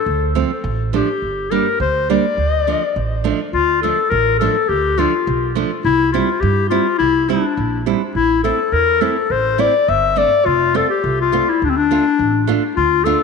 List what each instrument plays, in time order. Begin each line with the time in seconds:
Already playing: clarinet A4
0.06 upright bass D2
0.35 nylon-string guitar F3 A3 C4
0.64 upright bass A1
0.93 nylon-string guitar F3 A3 D4, clarinet G4
1.22 upright bass G1
1.51 nylon-string guitar G3 A#3 D4, clarinet A#4
1.80 upright bass D2, clarinet C5
2.10 nylon-string guitar G3 A#3 D4, clarinet D5
2.37 upright bass D2
2.67 nylon-string guitar F3 A3 D4
2.96 upright bass A1
3.24 nylon-string guitar F3 A3 D4
3.52 upright bass D2, clarinet F4
3.82 nylon-string guitar F3 A3 D4, clarinet A4
4.10 upright bass A1, clarinet A#4
4.39 nylon-string guitar F3 A3 D4, clarinet A4
4.68 upright bass D2, clarinet G4
4.98 nylon-string guitar F3 A3 D4, clarinet F4
5.27 upright bass B1
5.55 nylon-string guitar F3 A3 D4
5.85 upright bass C2, clarinet E4
6.12 nylon-string guitar G3 C4 E4, clarinet F4
6.40 upright bass G2, clarinet G4
6.69 nylon-string guitar G3 C4 E4, clarinet F4
6.98 upright bass C2, clarinet E4
7.28 nylon-string guitar G3 C4 E4, clarinet D4
7.57 upright bass A#1
7.86 nylon-string guitar G3 C4 E4
8.15 upright bass A1, clarinet E4
8.44 nylon-string guitar A3 C4 E4, clarinet A4
8.72 upright bass E2, clarinet A#4
9.01 nylon-string guitar A3 C4 E4, clarinet A4
9.30 upright bass A1, clarinet C5
9.58 nylon-string guitar A3 C4 E4, clarinet D5
9.88 upright bass G1, clarinet E5
10.16 nylon-string guitar A3 C4 D4, clarinet D5
10.46 upright bass F1, clarinet F4
10.74 nylon-string guitar A3 C4 F4, clarinet A4
10.90 clarinet G4
11.04 upright bass C2
11.21 clarinet F4
11.32 nylon-string guitar A3 C4 F4
11.49 clarinet E4
11.62 upright bass D2, clarinet D4
11.70 clarinet C4
11.77 clarinet D4
11.91 nylon-string guitar A3 D4 F4
12.19 upright bass A1
12.47 nylon-string guitar A3 D4 F4
12.76 upright bass D2, clarinet F4
13.04 nylon-string guitar A3 D4 F4, clarinet A4